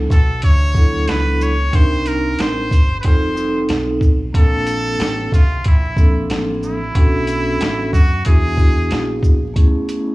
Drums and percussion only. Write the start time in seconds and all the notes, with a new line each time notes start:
0.10 kick, closed hi-hat, shaker
0.42 kick, closed hi-hat
0.74 kick, shaker
1.08 snare, closed hi-hat
1.41 shaker
1.73 kick, closed hi-hat
2.06 closed hi-hat, shaker
2.39 snare, closed hi-hat
2.71 kick, closed hi-hat, shaker
3.03 kick, closed hi-hat
3.37 shaker
3.69 snare, closed hi-hat
4.01 kick, shaker
4.34 kick, closed hi-hat
4.67 closed hi-hat, shaker
5.00 snare, closed hi-hat
5.32 kick, closed hi-hat, shaker
5.64 kick, closed hi-hat
5.97 kick, shaker
6.30 snare, closed hi-hat
6.63 shaker
6.95 kick, closed hi-hat
7.27 closed hi-hat, shaker
7.61 snare, closed hi-hat
7.93 kick, closed hi-hat, shaker
8.25 kick, closed hi-hat
8.57 kick, shaker
8.91 snare, closed hi-hat
9.23 kick, shaker
9.56 kick, closed hi-hat
9.89 closed hi-hat, shaker